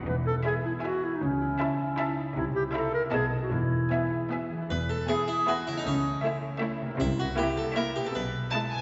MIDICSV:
0, 0, Header, 1, 9, 480
1, 0, Start_track
1, 0, Key_signature, 4, "major"
1, 0, Tempo, 385356
1, 81, Time_signature, 3, 2, 24, 8
1, 10981, End_track
2, 0, Start_track
2, 0, Title_t, "Violin section"
2, 0, Program_c, 0, 48
2, 563, Note_on_c, 0, 80, 47
2, 920, Note_off_c, 0, 80, 0
2, 1042, Note_on_c, 0, 80, 47
2, 1401, Note_off_c, 0, 80, 0
2, 1996, Note_on_c, 0, 81, 46
2, 2349, Note_off_c, 0, 81, 0
2, 2473, Note_on_c, 0, 81, 56
2, 2824, Note_off_c, 0, 81, 0
2, 3417, Note_on_c, 0, 82, 50
2, 3773, Note_off_c, 0, 82, 0
2, 3890, Note_on_c, 0, 81, 53
2, 4254, Note_off_c, 0, 81, 0
2, 4883, Note_on_c, 0, 80, 43
2, 5250, Note_off_c, 0, 80, 0
2, 5374, Note_on_c, 0, 80, 42
2, 5741, Note_off_c, 0, 80, 0
2, 6338, Note_on_c, 0, 80, 46
2, 6698, Note_off_c, 0, 80, 0
2, 6824, Note_on_c, 0, 80, 48
2, 7178, Note_off_c, 0, 80, 0
2, 7761, Note_on_c, 0, 76, 57
2, 8117, Note_off_c, 0, 76, 0
2, 8232, Note_on_c, 0, 76, 61
2, 8589, Note_off_c, 0, 76, 0
2, 9184, Note_on_c, 0, 76, 54
2, 9544, Note_off_c, 0, 76, 0
2, 9655, Note_on_c, 0, 76, 60
2, 10019, Note_off_c, 0, 76, 0
2, 10611, Note_on_c, 0, 81, 60
2, 10711, Note_off_c, 0, 81, 0
2, 10859, Note_on_c, 0, 80, 44
2, 10981, Note_off_c, 0, 80, 0
2, 10981, End_track
3, 0, Start_track
3, 0, Title_t, "Violin section"
3, 0, Program_c, 1, 48
3, 553, Note_on_c, 1, 76, 40
3, 915, Note_off_c, 1, 76, 0
3, 1041, Note_on_c, 1, 76, 44
3, 1401, Note_off_c, 1, 76, 0
3, 1994, Note_on_c, 1, 76, 46
3, 2348, Note_off_c, 1, 76, 0
3, 2461, Note_on_c, 1, 76, 57
3, 2818, Note_off_c, 1, 76, 0
3, 3417, Note_on_c, 1, 76, 53
3, 3773, Note_off_c, 1, 76, 0
3, 3891, Note_on_c, 1, 75, 47
3, 4254, Note_off_c, 1, 75, 0
3, 4881, Note_on_c, 1, 76, 42
3, 5248, Note_off_c, 1, 76, 0
3, 5385, Note_on_c, 1, 76, 41
3, 5747, Note_off_c, 1, 76, 0
3, 6343, Note_on_c, 1, 64, 44
3, 6701, Note_off_c, 1, 64, 0
3, 6832, Note_on_c, 1, 64, 47
3, 7182, Note_off_c, 1, 64, 0
3, 7774, Note_on_c, 1, 64, 48
3, 8124, Note_off_c, 1, 64, 0
3, 8237, Note_on_c, 1, 64, 51
3, 8592, Note_off_c, 1, 64, 0
3, 9191, Note_on_c, 1, 64, 57
3, 9548, Note_off_c, 1, 64, 0
3, 9676, Note_on_c, 1, 64, 53
3, 10030, Note_off_c, 1, 64, 0
3, 10635, Note_on_c, 1, 64, 44
3, 10981, Note_off_c, 1, 64, 0
3, 10981, End_track
4, 0, Start_track
4, 0, Title_t, "Harpsichord"
4, 0, Program_c, 2, 6
4, 5860, Note_on_c, 2, 71, 67
4, 6086, Note_off_c, 2, 71, 0
4, 6097, Note_on_c, 2, 69, 54
4, 6324, Note_off_c, 2, 69, 0
4, 6332, Note_on_c, 2, 68, 65
4, 6561, Note_off_c, 2, 68, 0
4, 6575, Note_on_c, 2, 64, 57
4, 6802, Note_off_c, 2, 64, 0
4, 6827, Note_on_c, 2, 66, 54
4, 7047, Note_off_c, 2, 66, 0
4, 7064, Note_on_c, 2, 64, 53
4, 7174, Note_off_c, 2, 64, 0
4, 7194, Note_on_c, 2, 63, 52
4, 7298, Note_off_c, 2, 63, 0
4, 7308, Note_on_c, 2, 61, 61
4, 8435, Note_off_c, 2, 61, 0
4, 8718, Note_on_c, 2, 64, 72
4, 8938, Note_off_c, 2, 64, 0
4, 8961, Note_on_c, 2, 66, 68
4, 9179, Note_off_c, 2, 66, 0
4, 9189, Note_on_c, 2, 67, 79
4, 9413, Note_off_c, 2, 67, 0
4, 9434, Note_on_c, 2, 69, 72
4, 9656, Note_off_c, 2, 69, 0
4, 9666, Note_on_c, 2, 70, 77
4, 9891, Note_off_c, 2, 70, 0
4, 9913, Note_on_c, 2, 67, 50
4, 10023, Note_off_c, 2, 67, 0
4, 10046, Note_on_c, 2, 69, 49
4, 10151, Note_off_c, 2, 69, 0
4, 10155, Note_on_c, 2, 71, 68
4, 10981, Note_off_c, 2, 71, 0
4, 10981, End_track
5, 0, Start_track
5, 0, Title_t, "Clarinet"
5, 0, Program_c, 3, 71
5, 81, Note_on_c, 3, 71, 55
5, 189, Note_off_c, 3, 71, 0
5, 330, Note_on_c, 3, 69, 60
5, 436, Note_off_c, 3, 69, 0
5, 567, Note_on_c, 3, 68, 60
5, 674, Note_off_c, 3, 68, 0
5, 808, Note_on_c, 3, 64, 54
5, 915, Note_off_c, 3, 64, 0
5, 1057, Note_on_c, 3, 66, 60
5, 1301, Note_on_c, 3, 64, 54
5, 1320, Note_off_c, 3, 66, 0
5, 1439, Note_on_c, 3, 63, 53
5, 1457, Note_off_c, 3, 64, 0
5, 1541, Note_off_c, 3, 63, 0
5, 1550, Note_on_c, 3, 61, 55
5, 2697, Note_off_c, 3, 61, 0
5, 2946, Note_on_c, 3, 64, 64
5, 3053, Note_off_c, 3, 64, 0
5, 3184, Note_on_c, 3, 67, 70
5, 3290, Note_off_c, 3, 67, 0
5, 3428, Note_on_c, 3, 69, 62
5, 3652, Note_off_c, 3, 69, 0
5, 3659, Note_on_c, 3, 70, 68
5, 3766, Note_off_c, 3, 70, 0
5, 3896, Note_on_c, 3, 68, 63
5, 4059, Note_off_c, 3, 68, 0
5, 4269, Note_on_c, 3, 66, 50
5, 4383, Note_on_c, 3, 64, 51
5, 4402, Note_off_c, 3, 66, 0
5, 5621, Note_off_c, 3, 64, 0
5, 10981, End_track
6, 0, Start_track
6, 0, Title_t, "Harp"
6, 0, Program_c, 4, 46
6, 82, Note_on_c, 4, 52, 42
6, 319, Note_on_c, 4, 68, 29
6, 562, Note_on_c, 4, 59, 33
6, 784, Note_off_c, 4, 68, 0
6, 799, Note_on_c, 4, 68, 36
6, 1040, Note_on_c, 4, 66, 28
6, 1270, Note_off_c, 4, 68, 0
6, 1285, Note_on_c, 4, 68, 37
6, 1451, Note_off_c, 4, 66, 0
6, 1520, Note_on_c, 4, 49, 45
6, 1544, Note_off_c, 4, 52, 0
6, 1544, Note_off_c, 4, 59, 0
6, 1544, Note_off_c, 4, 68, 0
6, 1762, Note_on_c, 4, 64, 34
6, 1995, Note_on_c, 4, 61, 37
6, 2220, Note_off_c, 4, 64, 0
6, 2235, Note_on_c, 4, 64, 43
6, 2468, Note_on_c, 4, 63, 35
6, 2689, Note_off_c, 4, 64, 0
6, 2704, Note_on_c, 4, 64, 38
6, 2871, Note_off_c, 4, 63, 0
6, 2943, Note_on_c, 4, 48, 51
6, 2961, Note_off_c, 4, 49, 0
6, 2961, Note_off_c, 4, 61, 0
6, 3168, Note_off_c, 4, 64, 0
6, 3183, Note_on_c, 4, 64, 41
6, 3416, Note_on_c, 4, 60, 39
6, 3639, Note_off_c, 4, 64, 0
6, 3654, Note_on_c, 4, 64, 41
6, 3897, Note_on_c, 4, 47, 44
6, 3914, Note_off_c, 4, 60, 0
6, 3914, Note_off_c, 4, 64, 0
6, 3915, Note_off_c, 4, 48, 0
6, 4140, Note_on_c, 4, 63, 31
6, 4145, Note_on_c, 4, 69, 35
6, 4386, Note_on_c, 4, 52, 43
6, 4404, Note_off_c, 4, 47, 0
6, 4405, Note_off_c, 4, 63, 0
6, 4407, Note_off_c, 4, 69, 0
6, 4633, Note_on_c, 4, 68, 30
6, 4886, Note_on_c, 4, 59, 33
6, 5111, Note_off_c, 4, 68, 0
6, 5126, Note_on_c, 4, 68, 32
6, 5373, Note_on_c, 4, 66, 27
6, 5601, Note_off_c, 4, 68, 0
6, 5616, Note_on_c, 4, 68, 30
6, 5621, Note_off_c, 4, 52, 0
6, 5636, Note_on_c, 4, 52, 39
6, 5679, Note_off_c, 4, 59, 0
6, 5694, Note_on_c, 4, 59, 30
6, 5751, Note_on_c, 4, 64, 31
6, 5792, Note_off_c, 4, 66, 0
6, 5793, Note_off_c, 4, 68, 0
6, 5808, Note_on_c, 4, 68, 31
6, 7069, Note_on_c, 4, 49, 39
6, 7128, Note_on_c, 4, 57, 36
6, 7166, Note_off_c, 4, 64, 0
6, 7181, Note_on_c, 4, 64, 35
6, 7204, Note_off_c, 4, 52, 0
6, 7232, Note_off_c, 4, 59, 0
6, 7239, Note_on_c, 4, 69, 32
6, 7290, Note_off_c, 4, 68, 0
6, 8488, Note_on_c, 4, 48, 46
6, 8543, Note_on_c, 4, 58, 42
6, 8585, Note_off_c, 4, 64, 0
6, 8600, Note_on_c, 4, 64, 41
6, 8621, Note_off_c, 4, 49, 0
6, 8651, Note_off_c, 4, 57, 0
6, 8657, Note_on_c, 4, 72, 42
6, 8706, Note_off_c, 4, 69, 0
6, 9927, Note_on_c, 4, 47, 40
6, 9979, Note_on_c, 4, 59, 31
6, 10020, Note_off_c, 4, 64, 0
6, 10035, Note_on_c, 4, 64, 33
6, 10055, Note_off_c, 4, 48, 0
6, 10083, Note_off_c, 4, 58, 0
6, 10091, Note_on_c, 4, 68, 35
6, 10139, Note_off_c, 4, 72, 0
6, 10886, Note_off_c, 4, 47, 0
6, 10901, Note_on_c, 4, 47, 33
6, 10939, Note_off_c, 4, 59, 0
6, 10981, Note_off_c, 4, 47, 0
6, 10981, Note_off_c, 4, 64, 0
6, 10981, Note_off_c, 4, 68, 0
6, 10981, End_track
7, 0, Start_track
7, 0, Title_t, "Viola section"
7, 0, Program_c, 5, 48
7, 563, Note_on_c, 5, 64, 45
7, 920, Note_off_c, 5, 64, 0
7, 1039, Note_on_c, 5, 64, 43
7, 1399, Note_off_c, 5, 64, 0
7, 1999, Note_on_c, 5, 64, 53
7, 2351, Note_off_c, 5, 64, 0
7, 2464, Note_on_c, 5, 64, 51
7, 2819, Note_off_c, 5, 64, 0
7, 3413, Note_on_c, 5, 64, 55
7, 3770, Note_off_c, 5, 64, 0
7, 3889, Note_on_c, 5, 59, 49
7, 4253, Note_off_c, 5, 59, 0
7, 4884, Note_on_c, 5, 59, 42
7, 5250, Note_off_c, 5, 59, 0
7, 5368, Note_on_c, 5, 59, 40
7, 5738, Note_off_c, 5, 59, 0
7, 6334, Note_on_c, 5, 59, 48
7, 6696, Note_off_c, 5, 59, 0
7, 6819, Note_on_c, 5, 59, 47
7, 7175, Note_off_c, 5, 59, 0
7, 7764, Note_on_c, 5, 57, 56
7, 8119, Note_off_c, 5, 57, 0
7, 8242, Note_on_c, 5, 57, 59
7, 8595, Note_off_c, 5, 57, 0
7, 9189, Note_on_c, 5, 58, 64
7, 9546, Note_off_c, 5, 58, 0
7, 9667, Note_on_c, 5, 58, 54
7, 10025, Note_off_c, 5, 58, 0
7, 10633, Note_on_c, 5, 56, 44
7, 10981, Note_off_c, 5, 56, 0
7, 10981, End_track
8, 0, Start_track
8, 0, Title_t, "Cello section"
8, 0, Program_c, 6, 48
8, 81, Note_on_c, 6, 40, 52
8, 460, Note_off_c, 6, 40, 0
8, 1521, Note_on_c, 6, 49, 52
8, 1899, Note_off_c, 6, 49, 0
8, 2937, Note_on_c, 6, 48, 59
8, 3315, Note_off_c, 6, 48, 0
8, 3891, Note_on_c, 6, 47, 56
8, 4277, Note_off_c, 6, 47, 0
8, 4381, Note_on_c, 6, 40, 45
8, 4776, Note_off_c, 6, 40, 0
8, 5859, Note_on_c, 6, 40, 50
8, 6241, Note_off_c, 6, 40, 0
8, 7300, Note_on_c, 6, 49, 55
8, 7674, Note_off_c, 6, 49, 0
8, 8713, Note_on_c, 6, 48, 71
8, 9090, Note_off_c, 6, 48, 0
8, 10152, Note_on_c, 6, 47, 56
8, 10536, Note_off_c, 6, 47, 0
8, 10981, End_track
9, 0, Start_track
9, 0, Title_t, "Double bass section"
9, 0, Program_c, 7, 48
9, 75, Note_on_c, 7, 28, 52
9, 458, Note_off_c, 7, 28, 0
9, 1518, Note_on_c, 7, 37, 57
9, 1897, Note_off_c, 7, 37, 0
9, 2942, Note_on_c, 7, 36, 58
9, 3318, Note_off_c, 7, 36, 0
9, 3901, Note_on_c, 7, 35, 52
9, 4283, Note_off_c, 7, 35, 0
9, 4380, Note_on_c, 7, 28, 52
9, 4775, Note_off_c, 7, 28, 0
9, 5867, Note_on_c, 7, 28, 48
9, 6245, Note_off_c, 7, 28, 0
9, 7298, Note_on_c, 7, 37, 58
9, 7674, Note_off_c, 7, 37, 0
9, 8713, Note_on_c, 7, 36, 77
9, 9090, Note_off_c, 7, 36, 0
9, 10140, Note_on_c, 7, 35, 54
9, 10529, Note_off_c, 7, 35, 0
9, 10981, End_track
0, 0, End_of_file